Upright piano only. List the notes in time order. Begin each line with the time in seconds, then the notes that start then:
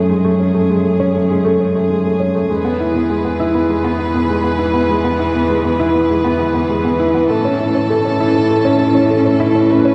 Already playing: G#3 A3 C#4
0.10 G#3
0.25 A3
0.40 C#4
0.55 A3
0.70 G#3
0.84 A3
1.00 C#4
1.15 A3
1.30 G#3
1.45 A3
1.60 C#4
1.75 A3
1.90 G#3
2.05 A3
2.20 C#4
2.35 A3
2.50 G#3
2.65 B3
2.80 E4
2.95 B3
3.10 G#3
3.25 B3
3.40 E4
3.55 B3
3.70 G#3
3.84 B3
3.99 E4
4.14 B3
4.29 G#3
4.44 B3
4.59 E4
4.74 B3
4.89 G#3
5.04 B3
5.19 E4
5.35 B3
5.50 G#3
5.64 B3
5.79 E4
5.94 B3
6.09 G#3
6.24 B3
6.40 E4
6.54 B3
6.69 G#3
6.85 B3
6.99 E4
7.15 B3
7.30 A3
7.45 C#4
7.59 E4
7.75 C#4
7.90 A3
8.05 C#4
8.20 E4
8.35 C#4
8.50 A3
8.65 C#4
8.80 E4
8.95 C#4
9.10 A3
9.25 C#4
9.40 E4
9.55 C#4
9.70 A3
9.85 C#4